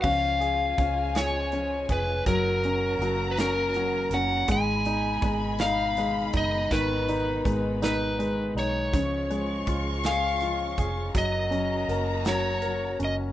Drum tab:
CC |x-----|------|------|------|
HH |-xxxxx|xxxxxx|xxxxxx|xxxxxx|
SD |---o--|---o--|---o--|---o--|
BD |o-o--o|o-----|o-o--o|o-o---|

CC |------|------|
HH |xxxxxx|xxxxxx|
SD |---o--|---o--|
BD |o-o--o|o-----|